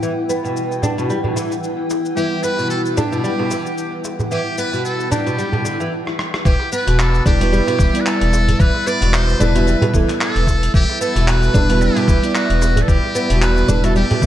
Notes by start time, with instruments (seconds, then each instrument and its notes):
Already playing: synth keys G3 B3 E4 B4, ambient pad E4 B4 F#5 G5
0.03 oud E3, shaker
0.29 oud B3, shaker
0.44 oud B2, shaker
0.57 shaker
0.71 darbuka ka, shaker
0.82 oud D4, darbuka tek, darbuka dum, shaker
0.98 oud B2, shaker
1.10 oud G3, shaker
1.24 oud B2, darbuka dum
1.36 oud E3, darbuka tek, shaker
1.51 darbuka ka, shaker
1.64 shaker
1.90 darbuka ka, darbuka tek, shaker
2.05 shaker
2.15 oud E3, synth keys G3 B3 E4, muted trumpet G4, shaker
2.19 synth keys B4
2.43 oud B3, muted trumpet B4, shaker
2.59 oud B2, shaker
2.70 muted trumpet A4, shaker
2.86 shaker
2.97 oud D4, muted trumpet G4, darbuka tek, darbuka dum, shaker
3.12 oud B2, shaker
3.24 oud G3, darbuka tek, shaker
3.39 oud B2, darbuka tek
3.51 oud E3, darbuka ka, darbuka tek, shaker
3.66 shaker
3.78 shaker
4.05 darbuka tek, shaker
4.19 darbuka ka, darbuka dum, shaker
4.31 oud E3, muted trumpet G4, shaker
4.58 oud B3, muted trumpet B4, shaker
4.73 oud B2, shaker
4.85 muted trumpet A4, shaker
5.00 darbuka ka, shaker
5.11 oud D4, muted trumpet G4, darbuka tek, darbuka dum, shaker
5.27 oud B2, shaker
5.38 oud G3, shaker
5.53 oud B2, darbuka dum
5.65 oud D3, darbuka tek, shaker
5.80 oud E3, darbuka ka, shaker
6.07 cross-stick
6.19 cross-stick
6.34 cross-stick
6.45 analog synth bass E1, oud E3, muted trumpet G4, ambient pad B4 E5 E6, kick, shaker
6.60 darbuka ka
6.72 oud B3, muted trumpet B4, shaker
6.87 analog synth bass E1, oud B2, closed hi-hat, darbuka ka, shaker
6.99 muted trumpet A4, clap, shaker
7.15 shaker
7.25 analog synth bass E1, synth keys G3 B3 E4 B4, oud D4, muted trumpet G4, kick, darbuka ka, darbuka tek, darbuka dum, shaker
7.40 oud B2, synth keys G3 B3 E4 B4, closed hi-hat, shaker
7.52 oud G3, darbuka tek, shaker
7.67 oud B2, closed hi-hat, darbuka tek
7.79 analog synth bass E1, oud E3, kick, darbuka tek, shaker
7.92 synth keys G3 B3 E4, closed hi-hat, shaker
7.96 synth keys D5
8.01 muted trumpet B4
8.06 muted trumpet A4, clap, shaker
8.21 analog synth bass E1, closed hi-hat, darbuka ka
8.33 darbuka tek, shaker
8.48 closed hi-hat, darbuka dum, shaker
8.60 analog synth bass E1, oud E3, muted trumpet B4, kick, shaker
8.74 darbuka ka
8.87 oud B3, muted trumpet D5, shaker
9.01 analog synth bass E1, oud B2, closed hi-hat, darbuka ka, shaker
9.14 muted trumpet C5, clap, shaker
9.29 shaker
9.39 analog synth bass E1, synth keys G3 B3 E4 B4, oud D4, muted trumpet B4, darbuka ka, darbuka dum, shaker
9.55 oud B2, synth keys G3 B3 E4 E5, closed hi-hat, shaker
9.67 oud G3, shaker
9.82 oud B2, closed hi-hat, darbuka dum
9.93 analog synth bass E1, oud E3, synth keys G3 B3 E4 A4, kick, darbuka tek, shaker
10.09 synth keys B3 E4 A4, clap, closed hi-hat, shaker
10.21 muted trumpet A4, clap, shaker
10.35 analog synth bass E1, closed hi-hat
10.47 kick, darbuka tek, shaker
10.63 closed hi-hat, shaker
10.74 analog synth bass E1, oud E3, muted trumpet G4, kick, shaker
10.89 darbuka ka
11.01 oud B3, muted trumpet A4, shaker
11.16 analog synth bass E1, oud B2, closed hi-hat, darbuka ka, shaker
11.28 muted trumpet B4, clap, shaker
11.43 shaker
11.54 analog synth bass E1, synth keys G3 B3 E4 B4, oud D4, kick, darbuka ka, darbuka tek, darbuka dum, shaker
11.69 oud B2, synth keys G3 B3 E4 B4, closed hi-hat, shaker
11.81 oud G3, muted trumpet G4, darbuka tek, shaker
11.96 oud B2, closed hi-hat, darbuka tek
12.08 analog synth bass E1, oud E3, kick, darbuka tek, shaker
12.21 synth keys G3 B3 E4, closed hi-hat, shaker
12.25 synth keys D5
12.35 muted trumpet F#4, clap, shaker
12.50 analog synth bass E1, closed hi-hat, darbuka ka
12.62 darbuka tek, shaker
12.76 closed hi-hat, darbuka dum, shaker
12.82 muted trumpet A4
12.88 analog synth bass E1, oud E3, muted trumpet G4, kick, shaker
13.04 darbuka ka
13.15 oud B3, shaker
13.30 analog synth bass E1, oud B2, closed hi-hat, darbuka ka, shaker
13.42 muted trumpet B4, clap, shaker
13.57 shaker
13.68 analog synth bass E1, synth keys G3 B3 E4 B4, oud D4, darbuka ka, darbuka dum, shaker
13.83 oud B2, synth keys G3 B3 E4 E5, muted trumpet A4, closed hi-hat, shaker
13.96 oud G3, muted trumpet G4, shaker
14.11 oud B2, closed hi-hat, darbuka dum
14.21 analog synth bass B1, oud E3, synth keys G3 B3 E4, kick, darbuka tek, shaker